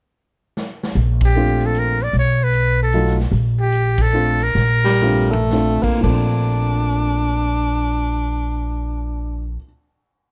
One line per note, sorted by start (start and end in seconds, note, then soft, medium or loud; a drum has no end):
0.57 snare medium
0.83 snare medium
0.95 2.10 A#1 medium
0.95 open hi-hat soft
1.21 kick medium
1.21 ride medium
1.25 1.67 G4 medium
1.35 1.95 A3 medium
1.35 1.95 C4 medium
1.35 1.96 D4 medium
1.35 1.96 F4 medium
1.60 open hi-hat soft
1.66 1.80 A4 medium
1.75 closed hi-hat soft
1.79 2.05 A#4 medium
2.00 2.16 D5 medium
2.00 open hi-hat soft
2.13 3.28 B1 medium
2.13 open hi-hat soft
2.19 2.45 C#5 medium
2.43 2.81 B4 medium
2.54 closed hi-hat soft
2.83 3.18 A4 medium
2.93 3.16 F#3 medium
2.93 3.16 A3 medium
2.93 3.17 D#4 medium
2.93 3.17 F4 medium
2.93 open hi-hat soft
3.07 snare soft
3.20 snare soft
3.32 4.51 A#1 medium
3.32 open hi-hat soft
3.60 4.03 G4 medium
3.72 closed hi-hat soft
3.98 4.44 A4 loud
3.98 kick medium
3.98 ride medium
4.13 4.37 A3 medium
4.13 4.37 C4 medium
4.13 4.38 D4 soft
4.13 4.38 F4 medium
4.40 5.51 A#4 medium
4.40 open hi-hat soft
4.55 5.79 A#1 medium
4.55 snare soft
4.84 5.32 G3 medium
4.84 snare medium
5.01 5.29 A3 medium
5.01 5.29 C4 medium
5.01 5.29 D4 medium
5.01 5.29 F4 medium
5.01 floor tom soft
5.31 5.84 A3 medium
5.31 floor tom medium
5.50 6.02 A3 medium
5.50 6.04 C4 soft
5.50 6.05 D4 soft
5.50 6.05 F4 medium
5.50 snare medium
5.83 6.03 A#3 medium
5.83 muted upright bass stroke soft
5.83 kick medium
5.83 crash medium
5.98 9.54 A#2 medium
5.98 9.57 F3 medium
6.03 9.56 A#1 medium
6.03 9.60 A3 medium
6.03 9.63 C4 medium
6.03 9.56 D4 medium
6.03 kick medium
6.03 crash medium
6.10 9.66 D4 medium